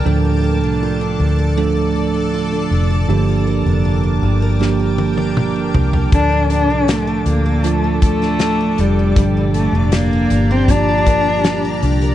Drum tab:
HH |----------------|----------------|x-x-x-x-x-x-x-x-|x-x-x-x-x-x-x-xx|
SD |----------------|--------o-------|----o------oo---|----o-------o---|
T1 |----------------|----------oo----|----------------|----------------|
T2 |----------------|------------o---|----------------|----------------|
FT |----------------|--------------oo|----------------|----------------|
BD |----------------|----------------|o---------o-----|o-------o-o-----|